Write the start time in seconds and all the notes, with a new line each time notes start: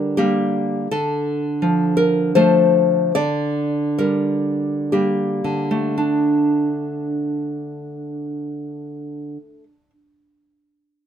Already playing: D3 G3 A#4
0.17 G3 A#3 G4
0.91 D3 A4
1.62 F3
1.97 A#4
2.35 F3 A3 C5
3.15 D3 D5
3.99 G3 A#4
4.92 G3 A#3 G4
5.44 D3
5.71 A3
5.98 D4